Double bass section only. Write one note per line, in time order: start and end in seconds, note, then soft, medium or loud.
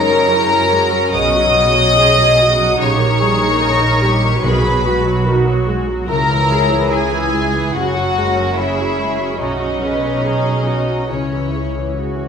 0.00 1.11 F#2 medium
1.16 2.77 B1 medium
2.80 4.40 A#1 medium
4.44 6.10 B1 medium
6.10 7.71 C#2 medium
7.76 9.41 F#1 medium
9.40 11.10 B1 medium
11.12 12.28 C#2 soft